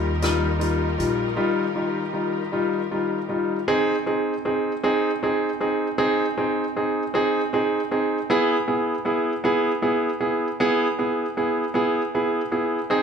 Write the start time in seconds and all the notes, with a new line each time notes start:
Already playing: D#2 D#3 D#4 F4 G4 A#4
0.22 G3 D#4 F4, cross-stick, closed hi-hat
0.59 G3 D#4 F4, closed hi-hat
0.98 A#1 G3 D#4 F4, closed hi-hat
1.36 G3 D#4 F4
1.75 G3 D#4 F4
2.13 G3 D#4 F4
2.52 G3 D#4 F4
2.91 G3 D#4 F4
3.29 G3 D#4 F4
3.68 C4 D#4 G#4
4.06 C4 D#4 G#4
4.45 C4 D#4 G#4
4.83 C4 D#4 G#4
5.23 C4 D#4 G#4
5.61 C4 D#4 G#4
5.98 C4 D#4 G#4
6.37 C4 D#4 G#4
6.76 C4 D#4 G#4
7.14 C4 D#4 G#4
7.53 C4 D#4 G#4
7.91 C4 D#4 G#4
8.30 B3 E4 G#4
8.68 B3 E4 G#4
9.05 B3 E4 G#4
9.44 B3 E4 G#4
9.82 B3 E4 G#4
10.21 B3 E4 G#4
10.60 B3 E4 G#4
10.99 B3 E4 G#4
11.37 B3 E4 G#4
11.74 B3 E4 G#4
12.15 B3 E4 G#4
12.52 B3 E4 G#4
12.90 C4 D#4 G#4